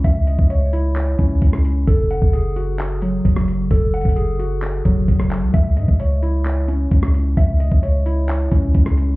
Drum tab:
HH |x-----x-----x-----x-----x-----x-----x-----x-----|x-----x-----x-----x-----x-----x-----x-----x-----|x-----x-x-x-x-----x-----x-----x-----x-----x-----|x-----x-----x-----x-----x-----x-----x-----x-----|
CP |------------------------x-----------------------|------------------------x-----------------------|------------------------x-----------------x-----|------------------------x-----------------------|
SD |---------------------------------------r--------|---------------------------------------r--------|---------------------------------------r--------|---------------------------------------r--------|
BD |o--------o--------------------o-----o-----------|o--------o--------------------------o-----------|o--------o--------------------o-----o-----------|o--------o--------------------------o-----------|

HH |x-----x-----x-----x-----x-----x-----x-----x-----|
CP |------------------------x-----------------------|
SD |---------------------------------------r--------|
BD |o--------o--------------------o-----o-----------|